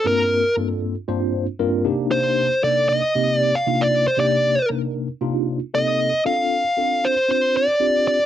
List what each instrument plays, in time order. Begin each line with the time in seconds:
0.04 tine electric piano G2 A#3 C4 D4 F4 A#4, lead electric guitar A#4
0.56 tine electric piano G2 A#3 C4 D4 F4 A4
1.08 tine electric piano G2 A#3 C4 D4 F4 C5
1.59 tine electric piano G2 A#3 C4 D4 F4 A#4
1.85 tine electric piano C3 A#3 D4 D#4 G4
2.11 lead electric guitar C5
2.63 tine electric piano C3 A#3 D4 D#4 A4, lead electric guitar D5
2.89 lead electric guitar D#5
3.15 tine electric piano C3 A#3 C4 D#4 G4
3.37 lead electric guitar D5
3.55 lead electric guitar F5
3.66 tine electric piano C3 A#3 D4 D#4 F4
3.81 lead electric guitar D5
4.08 lead electric guitar C5
4.17 tine electric piano C3 A#3 D4 D#4 G4, lead electric guitar D5
4.70 tine electric piano C3 A#3 D4 D#4 A#4
5.21 tine electric piano C3 A#3 D4 D#4 F4
5.74 tine electric piano C3 A#3 C4 D#4 A4, lead electric guitar D#5
6.25 tine electric piano C4 D4 F4 A4, lead electric guitar F5
6.77 tine electric piano C4 D4 F4 A4
7.05 lead electric guitar C5
7.28 tine electric piano C4 D4 F4 C5, lead electric guitar C5
7.57 lead electric guitar D5
7.80 tine electric piano C4 D4 F4 G4
8.08 lead electric guitar D5